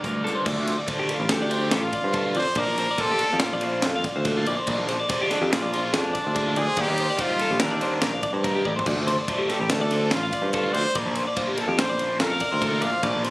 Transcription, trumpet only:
1.13 1.34 F4 medium
1.32 1.77 G4 loud
1.76 2.37 F4 medium
2.38 2.61 C5 loud
2.59 3.01 A#4 loud
3.00 3.42 A4 loud
3.41 4.25 F4 medium
5.30 5.53 D4 medium
5.51 5.96 F4 loud
5.94 6.60 D4 loud
6.58 6.82 G#4 loud
6.80 7.23 G4 loud
7.22 7.63 F4 loud
7.62 8.45 D4 medium
9.50 9.72 G4 medium
9.71 10.12 A4 loud
10.13 10.51 F4 medium
10.53 10.75 F4 medium
10.73 10.95 C5 loud
11.61 11.69 A4 medium
11.79 12.18 C5 loud
12.21 12.85 A#4 loud
12.83 13.04 F5 loud

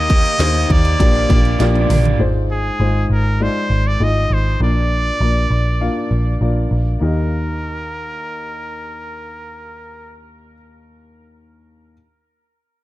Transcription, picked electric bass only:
0.00 0.24 D#2 loud
0.40 0.64 D#2 medium
0.70 0.95 D#2 loud
1.00 1.25 A#1 medium
1.30 1.55 A#1 medium
1.60 1.85 A#1 loud
1.90 2.14 A#1 medium
2.20 2.69 G#1 medium
2.80 3.04 G#1 medium
3.10 3.47 G#1 medium
3.70 3.95 G#1 medium
4.00 4.25 G#1 medium
4.30 4.55 G#1 medium
4.60 5.10 A#1 medium
5.20 5.45 A#1 medium
5.50 5.88 A#1 medium
6.11 6.36 A#1 medium
6.41 6.66 A#1 medium
6.71 6.96 A#1 medium
7.02 10.54 D#2 medium

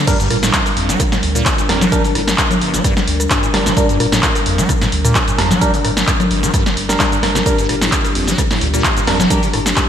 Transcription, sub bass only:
0.30 0.50 G1 loud
0.77 0.97 G1 medium
1.23 1.43 D2 medium
1.69 1.89 G1 medium
2.15 2.35 G1 loud
2.61 2.81 G1 medium
3.07 3.27 D2 medium
3.54 3.73 G1 medium
4.00 4.20 G1 loud
4.46 4.66 G1 medium
4.92 5.12 D2 medium
5.38 5.58 G1 medium
5.84 6.04 G1 loud
6.31 6.50 G1 medium
6.77 6.96 G1 medium
7.23 7.43 G1 medium
7.69 7.89 G1 loud
8.15 8.35 G1 medium
8.61 8.81 D2 medium
9.07 9.27 G1 loud
9.54 9.73 G1 loud

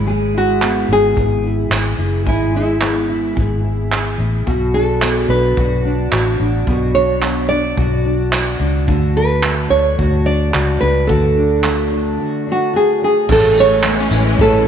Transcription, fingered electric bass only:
0.00 0.85 G#1 medium
0.88 1.14 G#1 medium
1.17 1.68 G#1 medium
1.70 1.96 G#1 medium
1.98 2.26 F#1 medium
2.26 3.33 G#1 medium
3.37 4.15 G#1 medium
4.18 4.44 A1 medium
4.47 5.26 B1 medium
5.29 5.54 B1 medium
5.57 6.08 B1 medium
6.12 6.38 A1 medium
6.40 6.65 A1 medium
6.67 7.74 B1 loud
7.77 8.56 B1 medium
8.60 8.85 C#2 medium
8.87 9.67 D2 medium
9.70 9.96 D2 medium
9.99 10.50 D2 loud
10.54 10.79 C#2 medium
10.81 11.07 C#2 medium
11.09 12.15 D2 loud
13.29 14.08 A1 medium
14.11 14.37 A1 medium
14.39 14.68 A1 loud

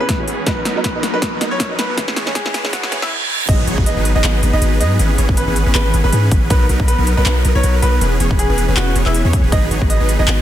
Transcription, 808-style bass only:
0.00 0.10 G#1 medium
0.09 0.26 G#2 loud
0.28 0.48 G#1 loud
0.66 0.74 B1 loud
0.76 0.93 B1 medium
0.95 1.12 B1 medium
1.14 1.20 B1 loud
1.41 1.49 B1 loud
1.52 1.58 B1 loud
1.79 1.96 B1 loud
3.49 3.66 G#1 loud
3.67 3.76 G#1 loud
3.78 3.95 G#1 loud
3.97 4.14 G#1 loud
4.16 4.22 G#1 loud
4.24 4.41 G#1 loud
4.43 4.51 G#1 loud
4.53 4.60 G#1 medium
4.62 4.82 G#1 loud
4.81 4.98 G#2 medium
4.99 5.17 G#1 loud
5.18 5.27 G#1 loud
5.29 5.46 G#1 loud
5.48 5.64 G#1 medium
5.67 5.73 G#1 loud
5.75 5.92 G#1 loud
5.94 6.02 G#1 loud
6.04 6.11 G#1 medium
6.13 6.30 G#2 loud
6.32 6.49 G#1 loud
6.50 6.68 B1 loud
6.69 6.78 B1 loud
6.80 6.97 B1 loud
6.99 7.15 B1 medium
7.18 7.24 B1 loud
7.26 7.43 B1 loud
7.45 7.53 B1 loud
7.55 7.62 B1 loud
7.64 7.81 B1 loud
7.83 8.00 B1 medium
8.01 8.19 E1 loud
8.20 8.29 E1 loud
8.31 8.47 E1 loud
8.50 8.66 E1 medium
8.69 8.75 E1 loud
8.77 8.94 E1 loud
8.96 9.04 E1 loud
9.06 9.23 E1 loud
9.25 9.42 E2 loud
9.44 9.51 E1 loud
9.52 9.70 G#1 loud
9.71 9.80 G#1 loud
9.82 9.98 G#1 loud
10.00 10.17 G#1 loud
10.19 10.26 G#1 loud
10.28 10.42 G#1 loud

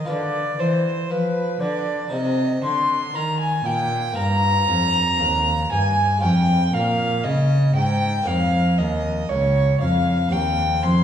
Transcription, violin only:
0.10 0.61 D5 medium
0.60 1.13 C5 medium
1.11 1.62 B4 medium
1.62 2.12 D5 medium
2.13 2.63 D#5 medium
2.64 3.17 C6 medium
3.15 3.40 A#5 medium
3.40 3.67 G#5 medium
3.66 4.17 G5 medium
4.18 5.68 A#5 loud
5.72 6.22 G#5 medium
6.23 6.76 G5 medium
6.74 7.25 F5 medium
7.24 7.75 D#5 medium
7.76 8.29 G5 medium
8.27 8.80 F5 medium
8.79 9.31 D#5 medium
9.29 9.80 C#5 medium
9.81 10.34 F5 medium
10.32 10.85 G5 medium
10.83 11.04 C6 loud

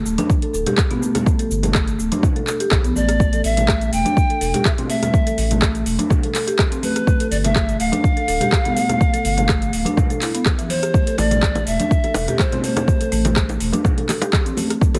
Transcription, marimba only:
0.05 0.18 A3 medium
0.18 0.24 D4 loud
0.42 0.52 A4 loud
0.54 0.65 A4 loud
0.67 0.77 G4 loud
0.91 1.02 B3 loud
1.02 1.15 A3 medium
1.26 1.33 A3 medium
1.39 1.49 A4 loud
1.64 1.73 A3 medium
1.75 1.86 A3 loud
1.99 2.11 A3 medium
2.12 2.18 D4 loud
2.36 2.46 A4 loud
2.47 2.59 A4 loud
2.60 2.71 G4 loud
2.85 2.95 B3 loud
2.96 3.08 A3 medium
3.20 3.27 A3 medium
3.33 3.43 A4 loud
3.57 3.67 A3 medium
3.69 3.80 A3 loud
3.93 4.05 A3 medium
4.06 4.12 D4 loud
4.30 4.40 A4 loud
4.41 4.53 A4 loud
4.54 4.64 G4 loud
4.78 4.89 C4 loud
4.90 5.02 A3 medium
5.14 5.21 A3 medium
5.27 5.37 A4 loud
5.51 5.61 A3 medium
5.62 5.74 A3 loud
5.86 5.98 A3 medium
5.99 6.05 D4 loud
6.23 6.33 A4 loud
6.34 6.46 A4 loud
6.47 6.58 G4 loud
6.72 6.82 C4 loud
6.83 6.95 A3 medium
7.07 7.14 A3 medium
7.20 7.30 A4 loud
7.44 7.54 A3 medium
7.55 7.67 A3 loud
7.80 7.92 A3 medium
7.93 7.99 D4 loud
8.17 8.27 A4 loud
8.28 8.40 A4 loud
8.41 8.51 G4 loud
8.65 8.76 B3 loud
8.76 8.89 A3 medium
9.00 9.08 A3 medium
9.13 9.24 A4 loud
9.38 9.48 A3 medium
9.49 9.61 A3 loud
9.73 9.85 A3 medium
9.86 9.92 D4 loud
10.10 10.20 A4 loud
10.22 10.33 E4 medium
10.35 10.45 B3 medium
10.59 10.69 E3 loud
10.70 10.82 E3 medium
10.83 10.93 G4 medium
10.94 11.01 A3 medium
11.07 11.17 A4 loud
11.18 11.30 A3 loud
11.31 11.41 A3 medium
11.67 11.79 A3 medium
11.80 11.86 D4 loud
12.04 12.14 A4 loud
12.15 12.27 A4 loud
12.28 12.38 G4 loud
12.52 12.63 C4 loud
12.64 12.76 A3 medium
12.88 12.95 A3 medium
13.01 13.11 A4 loud
13.12 13.24 A3 loud
13.25 13.35 A3 medium
13.60 13.73 A3 medium
13.73 13.79 D4 loud
13.97 14.08 A4 loud
14.09 14.20 A4 loud
14.22 14.32 G4 loud
14.46 14.57 C4 loud
14.57 14.70 A3 medium
14.82 14.88 A3 medium
14.94 14.99 A4 loud

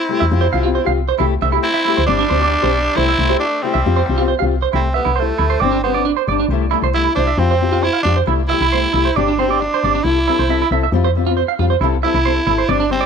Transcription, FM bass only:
0.22 0.29 E2 medium
0.31 0.48 F2 loud
0.54 0.79 C2 medium
0.87 1.12 C2 medium
1.20 1.37 C2 loud
1.42 1.59 C2 medium
1.98 2.06 D2 medium
2.08 2.25 G1 loud
2.31 2.56 D2 medium
2.64 2.89 B1 medium
2.98 3.14 C2 medium
3.18 3.36 C2 medium
3.75 3.83 C2 medium
3.86 4.03 F2 loud
4.09 4.34 C2 medium
4.42 4.67 C2 medium
4.74 5.00 C2 medium
5.06 5.32 C2 medium
5.39 5.57 D2 medium
5.61 6.13 G1 loud
6.28 6.45 G1 medium
6.48 6.75 C2 medium
6.82 7.08 C2 medium
7.17 7.34 C2 medium
7.38 7.89 F2 loud
8.05 8.22 F2 medium
8.28 8.53 C2 medium
8.61 8.86 C2 medium
8.94 9.11 C2 medium
9.17 9.68 G1 loud
9.84 10.00 G1 medium
10.05 10.30 C2 medium
10.39 10.64 C2 medium
10.71 10.88 C2 medium
10.92 11.44 F2 loud
11.59 11.76 F2 medium
11.81 12.07 C2 medium
12.14 12.40 C2 medium
12.47 12.64 G#1 medium
12.69 13.06 G1 loud

